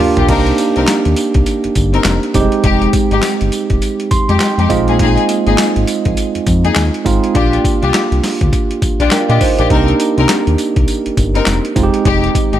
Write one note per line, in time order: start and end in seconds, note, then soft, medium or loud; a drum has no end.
0.00 0.29 A#3 medium
0.00 0.29 D4 medium
0.00 0.30 F4 medium
0.00 0.30 G4 loud
0.17 0.27 A#1 loud
0.17 0.29 A#3 medium
0.17 0.29 F4 medium
0.17 0.29 G4 medium
0.17 closed hi-hat medium
0.17 floor tom loud
0.29 0.53 C2 loud
0.29 1.09 A#3 medium
0.29 0.46 C4 medium
0.29 1.10 D4 medium
0.29 0.47 D#4 medium
0.29 1.10 D#4 medium
0.29 1.10 G4 medium
0.29 0.47 A#4 loud
0.29 kick loud
0.29 closed hi-hat loud
0.29 crash loud
0.46 closed hi-hat medium
0.58 closed hi-hat medium
0.58 tambourine medium
0.76 0.86 C2 medium
0.76 0.88 C4 medium
0.76 0.88 D#4 medium
0.76 0.88 A#4 medium
0.76 closed hi-hat soft
0.87 snare loud
0.87 clap medium
0.87 closed hi-hat medium
0.87 tambourine medium
1.05 1.15 D#2 medium
1.05 closed hi-hat medium
1.17 closed hi-hat medium
1.17 tambourine medium
1.34 1.44 C2 loud
1.34 kick loud
1.34 closed hi-hat medium
1.46 closed hi-hat medium
1.46 tambourine medium
1.64 1.69 G1 soft
1.64 closed hi-hat medium
1.75 2.00 G1 loud
1.75 kick medium
1.75 closed hi-hat medium
1.75 tambourine medium
1.94 2.05 C4 medium
1.94 2.05 D#4 medium
1.94 2.05 A#4 medium
1.94 closed hi-hat medium
2.04 2.20 F1 medium
2.04 snare loud
2.04 clap loud
2.04 closed hi-hat medium
2.04 tambourine medium
2.23 closed hi-hat soft
2.34 2.49 F1 loud
2.34 2.42 G3 medium
2.34 3.30 C4 medium
2.34 3.30 D#4 medium
2.34 3.30 G4 loud
2.34 kick medium
2.34 closed hi-hat medium
2.34 tambourine medium
2.41 3.33 G#3 loud
2.52 closed hi-hat medium
2.64 2.88 F1 loud
2.64 2.82 G#3 medium
2.64 2.82 D#4 medium
2.64 2.82 G4 loud
2.64 kick loud
2.64 closed hi-hat medium
2.82 closed hi-hat soft
2.93 kick loud
2.93 closed hi-hat medium
2.93 tambourine medium
3.11 3.21 G#1 medium
3.11 3.23 G#3 medium
3.11 3.23 D#4 medium
3.11 3.23 G4 medium
3.11 closed hi-hat medium
3.22 snare loud
3.22 clap medium
3.22 closed hi-hat medium
3.22 tambourine medium
3.41 3.51 G1 loud
3.41 closed hi-hat medium
3.52 closed hi-hat medium
3.52 tambourine medium
3.70 3.80 F1 medium
3.70 kick medium
3.70 closed hi-hat medium
3.82 closed hi-hat medium
3.82 tambourine medium
4.00 closed hi-hat medium
4.11 4.19 F2 medium
4.11 4.38 C6 medium
4.11 kick medium
4.11 closed hi-hat medium
4.11 tambourine medium
4.29 4.38 F2 medium
4.29 4.40 G#3 medium
4.29 4.41 D#4 medium
4.29 4.41 G4 medium
4.29 closed hi-hat soft
4.40 4.68 G5 medium
4.40 snare loud
4.40 clap loud
4.40 closed hi-hat medium
4.40 tambourine medium
4.58 4.68 F2 loud
4.58 4.70 G#3 medium
4.58 4.70 D#4 medium
4.58 4.70 G4 medium
4.58 closed hi-hat soft
4.69 5.18 A#1 loud
4.69 5.65 G#3 loud
4.69 5.65 C4 medium
4.69 5.65 D#4 medium
4.69 5.66 F4 loud
4.69 4.97 D#5 medium
4.69 kick medium
4.69 closed hi-hat medium
4.69 tambourine medium
4.88 4.98 A#3 medium
4.88 4.98 D#4 medium
4.88 4.99 G#4 medium
4.88 closed hi-hat medium
4.99 5.17 A#3 loud
4.99 5.17 D#4 medium
4.99 5.17 G#4 loud
4.99 kick loud
4.99 closed hi-hat medium
5.18 closed hi-hat medium
5.29 closed hi-hat medium
5.29 tambourine medium
5.47 5.56 G#1 loud
5.47 5.58 A#3 medium
5.47 5.58 D#4 medium
5.47 5.58 G#4 medium
5.47 closed hi-hat soft
5.58 snare loud
5.58 clap medium
5.58 closed hi-hat medium
5.58 tambourine medium
5.76 5.86 G#1 medium
5.76 closed hi-hat medium
5.87 closed hi-hat medium
5.87 tambourine medium
6.05 6.15 A#1 loud
6.05 kick medium
6.05 closed hi-hat medium
6.17 closed hi-hat medium
6.17 tambourine medium
6.35 6.40 F2 soft
6.35 closed hi-hat medium
6.47 6.71 F2 loud
6.47 kick medium
6.47 closed hi-hat medium
6.47 tambourine medium
6.65 6.76 A#3 medium
6.65 6.76 D#4 medium
6.65 6.76 G#4 medium
6.65 closed hi-hat medium
6.75 6.91 D#2 medium
6.75 snare loud
6.75 clap loud
6.75 closed hi-hat medium
6.75 tambourine medium
6.94 closed hi-hat soft
7.05 7.20 G#1 medium
7.05 7.27 G#3 medium
7.05 7.27 C4 medium
7.05 7.27 D#4 medium
7.05 7.27 F4 medium
7.05 kick medium
7.05 closed hi-hat medium
7.05 tambourine medium
7.24 closed hi-hat medium
7.34 7.59 A#1 loud
7.34 8.15 A#3 medium
7.34 8.15 D4 medium
7.34 7.53 D4 loud
7.34 8.16 F4 medium
7.34 7.53 F4 medium
7.34 8.16 G4 medium
7.34 7.53 G4 loud
7.34 kick loud
7.34 closed hi-hat medium
7.53 closed hi-hat medium
7.65 kick loud
7.65 closed hi-hat medium
7.65 tambourine medium
7.82 7.92 C2 medium
7.82 7.94 D4 medium
7.82 7.94 F4 medium
7.82 7.94 G4 medium
7.82 closed hi-hat soft
7.94 snare loud
7.94 clap loud
7.94 closed hi-hat medium
7.94 tambourine medium
8.12 8.21 C2 medium
8.12 closed hi-hat medium
8.23 snare medium
8.23 open hi-hat medium
8.23 tambourine medium
8.41 8.50 D2 medium
8.41 kick medium
8.41 closed hi-hat medium
8.53 kick medium
8.53 closed hi-hat medium
8.53 tambourine medium
8.71 closed hi-hat medium
8.82 8.89 A#1 medium
8.82 kick medium
8.82 closed hi-hat medium
8.82 tambourine medium
9.00 9.09 A#1 medium
9.00 9.11 D4 medium
9.00 9.11 F4 medium
9.00 9.12 G4 medium
9.00 closed hi-hat medium
9.11 9.29 A#4 medium
9.11 9.28 G5 medium
9.11 snare loud
9.11 clap loud
9.11 closed hi-hat medium
9.11 tambourine medium
9.29 9.39 A#2 medium
9.29 9.41 D4 medium
9.29 9.41 F4 medium
9.29 9.41 G4 medium
9.29 9.40 D#5 medium
9.29 closed hi-hat medium
9.41 9.58 D#4 medium
9.41 9.58 C5 medium
9.41 kick loud
9.41 open hi-hat medium
9.41 tambourine medium
9.59 9.68 A#1 loud
9.59 9.70 D4 medium
9.59 9.69 D4 medium
9.59 9.70 F4 medium
9.59 9.70 G4 medium
9.59 9.87 A#4 medium
9.59 closed hi-hat medium
9.70 9.94 C2 loud
9.70 10.51 A#3 medium
9.70 9.88 C4 loud
9.70 10.51 D4 medium
9.70 10.51 D#4 medium
9.70 9.88 D#4 medium
9.70 10.51 G4 medium
9.70 9.88 A#4 loud
9.70 kick loud
9.70 closed hi-hat medium
9.88 closed hi-hat medium
10.00 closed hi-hat medium
10.00 tambourine medium
10.17 10.27 C2 medium
10.17 10.29 C4 medium
10.17 10.29 D#4 medium
10.17 10.29 A#4 medium
10.17 closed hi-hat medium
10.29 snare loud
10.29 clap loud
10.29 closed hi-hat medium
10.29 tambourine medium
10.47 10.56 D#2 medium
10.47 closed hi-hat medium
10.58 closed hi-hat medium
10.58 tambourine medium
10.76 10.86 C2 medium
10.76 kick medium
10.76 closed hi-hat medium
10.88 closed hi-hat medium
10.88 tambourine medium
11.06 11.11 G1 soft
11.06 closed hi-hat medium
11.17 11.41 G1 loud
11.17 kick medium
11.17 closed hi-hat medium
11.17 tambourine medium
11.35 11.46 C4 medium
11.35 11.46 D#4 medium
11.35 11.47 A#4 medium
11.35 closed hi-hat medium
11.46 11.61 F1 loud
11.46 snare loud
11.46 clap loud
11.46 closed hi-hat medium
11.46 tambourine medium
11.65 closed hi-hat medium
11.76 11.91 F1 loud
11.76 12.60 G#3 medium
11.76 12.60 C4 medium
11.76 12.60 D#4 medium
11.76 11.84 F4 medium
11.76 kick medium
11.76 closed hi-hat medium
11.76 tambourine medium
11.83 12.60 G4 loud
11.94 closed hi-hat medium
12.05 12.29 F1 loud
12.05 12.23 G#3 medium
12.05 12.23 D#4 medium
12.05 12.23 G4 loud
12.05 kick loud
12.05 closed hi-hat medium
12.24 closed hi-hat medium
12.35 kick loud
12.35 closed hi-hat medium
12.35 tambourine medium
12.53 12.60 G#1 medium
12.53 12.60 G#3 medium
12.53 12.60 D#4 medium
12.53 12.60 G4 medium
12.53 closed hi-hat soft